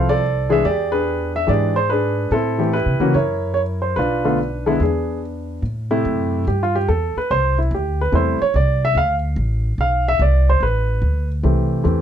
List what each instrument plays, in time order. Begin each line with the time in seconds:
Already playing: upright bass C2, grand piano F3 C4 E4 C5 F5
0.09 grand piano A4 D5
0.49 grand piano E3 G#3 D4 G#4 E5
0.65 upright bass E2, grand piano G4 G#4 D5
0.92 grand piano D4 G#4 B4
1.36 grand piano E5
1.47 upright bass G#2, grand piano E3 G#3 D4 G4 G#4 D5
1.76 grand piano C5
1.90 grand piano D4 G#4 B4
2.31 upright bass A2, grand piano C4 E4 A4
2.58 grand piano E3 A3 C4 G4
2.73 grand piano E4 G4 B4
2.86 upright bass C3
3.00 upright bass C#3, grand piano E3 A#3 C#4 F#4
3.14 upright bass F#2, grand piano E4 A#4 C#5
3.54 grand piano C#5
3.82 grand piano C5
3.96 upright bass B1, grand piano D4 F4 B4
4.24 grand piano D3 A3 B3 F4
4.66 grand piano D3 G#3 B3 E4 A4
4.80 upright bass E2, grand piano B3 D4 G#4
5.62 upright bass A2
5.91 grand piano C3 A3 E4 G4
6.05 upright bass F#2
6.47 upright bass G2, grand piano G4
6.63 grand piano F4
6.75 grand piano G4
6.88 upright bass E2, grand piano A4
7.17 grand piano B4, muted upright bass stroke
7.31 upright bass C2, grand piano C5
7.58 grand piano E4
7.71 upright bass D2, grand piano G4
8.01 grand piano B4
8.12 upright bass E2, grand piano C3 G3 A3 E4 C5
8.41 grand piano C#5, muted upright bass stroke
8.54 upright bass C2, grand piano D5
8.85 grand piano E5
8.95 upright bass D2, grand piano F5
9.36 upright bass A1
9.78 upright bass B1, grand piano F5
10.08 grand piano E5
10.19 upright bass C2, grand piano D5
10.49 grand piano C5
10.60 upright bass A1, grand piano B4
11.02 upright bass D2
11.43 upright bass C2, grand piano E3 A3 C4 G4
11.84 upright bass E2, grand piano E3 A3 C4 G4